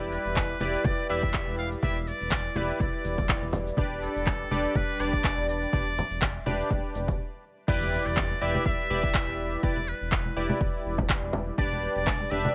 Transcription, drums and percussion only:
0.12 shaker medium
0.25 shaker medium
0.35 kick loud
0.35 clap loud
0.35 low conga medium
0.35 shaker soft
0.60 high conga loud
0.60 shaker medium
0.74 shaker soft
0.84 kick loud
0.84 high conga loud
0.84 shaker soft
1.09 shaker medium
1.23 kick medium
1.23 shaker soft
1.34 kick loud
1.34 clap loud
1.34 shaker soft
1.58 shaker medium
1.72 shaker medium
1.82 kick loud
1.82 high conga medium
1.82 shaker soft
2.07 shaker medium
2.20 shaker soft
2.31 kick loud
2.31 clap loud
2.31 low conga medium
2.31 shaker soft
2.55 high conga loud
2.55 shaker medium
2.69 shaker soft
2.80 kick loud
2.80 high conga loud
2.80 shaker soft
3.05 high conga medium
3.05 shaker medium
3.18 kick medium
3.18 high conga medium
3.18 low conga medium
3.18 shaker soft
3.28 kick loud
3.28 clap loud
3.28 shaker soft
3.42 high conga medium
3.53 low conga medium
3.53 shaker loud
3.67 shaker medium
3.77 kick loud
3.77 high conga medium
3.77 shaker soft
4.02 shaker medium
4.16 shaker soft
4.26 kick loud
4.26 clap medium
4.26 low conga medium
4.26 shaker soft
4.51 high conga medium
4.51 shaker medium
4.64 shaker soft
4.75 kick loud
4.75 high conga loud
4.75 shaker soft
5.00 shaker medium
5.13 kick medium
5.13 shaker medium
5.24 kick loud
5.24 clap loud
5.24 shaker soft
5.49 shaker medium
5.61 shaker soft
5.73 kick loud
5.73 high conga medium
5.73 shaker soft
5.98 low conga medium
5.98 shaker medium
6.10 shaker soft
6.21 kick loud
6.21 clap loud
6.21 low conga medium
6.21 shaker soft
6.47 high conga loud
6.47 shaker medium
6.60 shaker soft
6.70 kick loud
6.70 high conga loud
6.70 shaker soft
6.95 high conga medium
6.95 shaker medium
7.08 kick medium
7.08 high conga medium
7.08 low conga medium
7.08 shaker soft
7.68 kick loud
7.68 crash loud
7.82 high conga medium
8.17 kick loud
8.17 clap loud
8.17 low conga medium
8.30 high conga medium
8.41 high conga medium
8.55 high conga loud
8.66 kick loud
8.91 high conga medium
9.03 kick medium
9.14 kick loud
9.14 clap loud
9.63 kick loud
9.77 high conga medium
10.12 kick loud
10.12 clap loud
10.26 high conga medium
10.36 high conga medium
10.50 high conga loud
10.61 kick loud
10.98 kick medium
10.98 high conga loud
10.98 low conga medium
11.09 kick loud
11.09 clap loud
11.33 low conga loud
11.58 kick loud
11.72 high conga medium
12.07 kick loud
12.07 clap loud
12.07 low conga loud
12.20 high conga medium
12.32 high conga medium
12.45 high conga loud

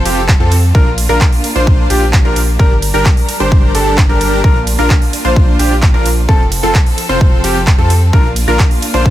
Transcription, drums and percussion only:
0.05 open hi-hat loud
0.05 ride medium
0.29 kick loud
0.29 clap loud
0.52 open hi-hat loud
0.52 ride medium
0.75 kick loud
0.98 open hi-hat loud
0.98 ride medium
1.21 kick loud
1.21 clap loud
1.32 open hi-hat medium
1.44 open hi-hat loud
1.44 ride medium
1.67 kick loud
1.90 open hi-hat loud
1.90 ride medium
2.13 kick loud
2.13 clap loud
2.36 open hi-hat loud
2.36 ride medium
2.59 kick loud
2.82 open hi-hat loud
2.82 ride medium
3.06 kick loud
3.06 clap loud
3.17 open hi-hat medium
3.29 open hi-hat loud
3.29 ride medium
3.52 kick loud
3.75 open hi-hat loud
3.75 ride medium
3.98 kick loud
3.98 clap loud
4.21 open hi-hat loud
4.21 ride medium
4.44 kick loud
4.67 open hi-hat loud
4.67 ride medium
4.90 kick loud
4.90 clap loud
5.02 open hi-hat medium
5.13 open hi-hat loud
5.13 ride medium
5.36 kick loud
5.59 open hi-hat loud
5.59 ride medium
5.82 kick loud
5.82 clap loud
6.06 open hi-hat loud
6.06 ride medium
6.29 kick loud
6.52 open hi-hat loud
6.52 ride medium
6.75 kick loud
6.75 clap loud
6.86 open hi-hat medium
6.98 open hi-hat loud
6.98 ride medium
7.21 kick loud
7.44 open hi-hat loud
7.44 ride medium
7.67 kick loud
7.67 clap loud
7.90 open hi-hat loud
7.90 ride medium
8.13 kick loud
8.36 open hi-hat loud
8.36 ride medium
8.59 kick loud
8.59 clap loud
8.71 open hi-hat medium
8.82 open hi-hat loud
8.82 ride medium
9.06 kick loud

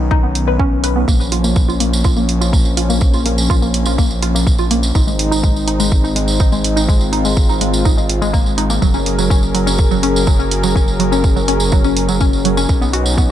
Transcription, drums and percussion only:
0.11 kick loud
0.35 open hi-hat loud
0.59 kick loud
0.84 open hi-hat loud
1.08 kick loud
1.08 tambourine medium
1.21 tambourine soft
1.32 open hi-hat loud
1.44 tambourine medium
1.56 kick loud
1.56 tambourine medium
1.70 tambourine soft
1.80 open hi-hat loud
1.93 tambourine medium
2.04 kick loud
2.04 tambourine medium
2.17 tambourine soft
2.29 open hi-hat loud
2.41 tambourine medium
2.53 kick loud
2.53 tambourine medium
2.65 tambourine soft
2.77 open hi-hat loud
2.90 tambourine medium
3.01 kick loud
3.01 tambourine medium
3.13 tambourine soft
3.26 open hi-hat loud
3.38 tambourine medium
3.50 kick loud
3.50 tambourine medium
3.62 tambourine soft
3.74 open hi-hat loud
3.86 tambourine medium
3.98 kick loud
3.98 tambourine medium
4.11 tambourine soft
4.23 open hi-hat loud
4.36 tambourine medium
4.47 kick loud
4.47 tambourine medium
4.58 tambourine soft
4.71 open hi-hat loud
4.83 tambourine medium
4.95 kick loud
4.95 tambourine medium
5.08 tambourine soft
5.19 open hi-hat loud
5.32 tambourine medium
5.43 kick loud
5.43 tambourine medium
5.56 tambourine soft
5.68 open hi-hat loud
5.80 tambourine medium
5.92 kick loud
5.92 tambourine medium
6.05 tambourine soft
6.16 open hi-hat loud
6.28 tambourine medium
6.40 kick loud
6.40 tambourine medium
6.52 tambourine soft
6.64 open hi-hat loud
6.77 tambourine medium
6.89 kick loud
6.89 tambourine medium
7.01 tambourine soft
7.13 open hi-hat loud
7.25 tambourine medium
7.37 kick loud
7.37 tambourine medium
7.49 tambourine soft
7.61 open hi-hat loud
7.73 tambourine medium
7.85 kick loud
7.85 tambourine medium
7.98 tambourine soft
8.09 open hi-hat loud
8.22 tambourine medium
8.34 kick loud
8.34 tambourine medium
8.46 tambourine soft
8.58 open hi-hat loud
8.70 tambourine medium
8.82 kick loud
8.82 tambourine medium
8.94 tambourine soft
9.06 open hi-hat loud
9.19 tambourine medium
9.30 kick loud
9.30 tambourine medium
9.43 tambourine soft
9.55 open hi-hat loud
9.67 tambourine medium
9.78 kick loud
9.78 tambourine medium
9.91 tambourine soft
10.03 open hi-hat loud
10.16 tambourine medium
10.27 kick loud
10.27 tambourine medium
10.40 tambourine soft
10.51 open hi-hat loud
10.63 tambourine medium
10.76 kick loud
10.76 tambourine medium
10.88 tambourine soft
11.00 open hi-hat medium
11.12 tambourine medium
11.24 kick loud
11.24 tambourine medium
11.37 tambourine soft
11.48 open hi-hat loud
11.60 tambourine medium
11.72 kick loud
11.72 tambourine medium
11.84 tambourine soft
11.97 open hi-hat loud
12.09 tambourine medium
12.21 kick loud
12.21 tambourine medium
12.33 tambourine soft
12.45 open hi-hat loud
12.57 tambourine medium
12.69 kick loud
12.69 tambourine medium
12.82 tambourine soft
12.93 open hi-hat loud
13.06 tambourine medium
13.18 kick loud
13.18 tambourine medium

